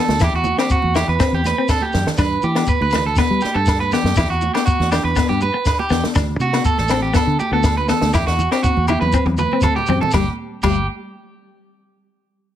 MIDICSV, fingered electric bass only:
0, 0, Header, 1, 2, 480
1, 0, Start_track
1, 0, Tempo, 496689
1, 196, Time_signature, 4, 2, 24, 8
1, 12133, End_track
2, 0, Start_track
2, 0, Title_t, "Fingered electric bass"
2, 0, Program_c, 0, 33
2, 83, Note_on_c, 0, 38, 94
2, 171, Note_off_c, 0, 38, 0
2, 206, Note_on_c, 0, 40, 111
2, 297, Note_off_c, 0, 40, 0
2, 321, Note_on_c, 0, 40, 82
2, 505, Note_off_c, 0, 40, 0
2, 809, Note_on_c, 0, 40, 86
2, 990, Note_off_c, 0, 40, 0
2, 1043, Note_on_c, 0, 40, 82
2, 1131, Note_off_c, 0, 40, 0
2, 1281, Note_on_c, 0, 40, 88
2, 1465, Note_off_c, 0, 40, 0
2, 1878, Note_on_c, 0, 42, 105
2, 1972, Note_off_c, 0, 42, 0
2, 2112, Note_on_c, 0, 43, 107
2, 2298, Note_off_c, 0, 43, 0
2, 2352, Note_on_c, 0, 52, 97
2, 2538, Note_off_c, 0, 52, 0
2, 2715, Note_on_c, 0, 38, 92
2, 3086, Note_off_c, 0, 38, 0
2, 3194, Note_on_c, 0, 55, 86
2, 3285, Note_off_c, 0, 55, 0
2, 3430, Note_on_c, 0, 43, 97
2, 3803, Note_off_c, 0, 43, 0
2, 3904, Note_on_c, 0, 42, 96
2, 3999, Note_off_c, 0, 42, 0
2, 4032, Note_on_c, 0, 40, 113
2, 4128, Note_off_c, 0, 40, 0
2, 4146, Note_on_c, 0, 40, 88
2, 4335, Note_off_c, 0, 40, 0
2, 4635, Note_on_c, 0, 40, 91
2, 4820, Note_off_c, 0, 40, 0
2, 4869, Note_on_c, 0, 40, 88
2, 4962, Note_off_c, 0, 40, 0
2, 5120, Note_on_c, 0, 43, 94
2, 5304, Note_off_c, 0, 43, 0
2, 5704, Note_on_c, 0, 40, 99
2, 5802, Note_off_c, 0, 40, 0
2, 5950, Note_on_c, 0, 38, 112
2, 6136, Note_off_c, 0, 38, 0
2, 6177, Note_on_c, 0, 48, 102
2, 6368, Note_off_c, 0, 48, 0
2, 6559, Note_on_c, 0, 33, 93
2, 6928, Note_off_c, 0, 33, 0
2, 7024, Note_on_c, 0, 50, 82
2, 7119, Note_off_c, 0, 50, 0
2, 7262, Note_on_c, 0, 38, 98
2, 7638, Note_off_c, 0, 38, 0
2, 7749, Note_on_c, 0, 38, 95
2, 7842, Note_off_c, 0, 38, 0
2, 7863, Note_on_c, 0, 40, 104
2, 7962, Note_off_c, 0, 40, 0
2, 7994, Note_on_c, 0, 40, 87
2, 8180, Note_off_c, 0, 40, 0
2, 8476, Note_on_c, 0, 40, 92
2, 8661, Note_off_c, 0, 40, 0
2, 8709, Note_on_c, 0, 40, 85
2, 8802, Note_off_c, 0, 40, 0
2, 8943, Note_on_c, 0, 40, 92
2, 9133, Note_off_c, 0, 40, 0
2, 9552, Note_on_c, 0, 42, 99
2, 9648, Note_off_c, 0, 42, 0
2, 9796, Note_on_c, 0, 31, 95
2, 9932, Note_off_c, 0, 31, 0
2, 10274, Note_on_c, 0, 31, 95
2, 10498, Note_off_c, 0, 31, 0
2, 12133, End_track
0, 0, End_of_file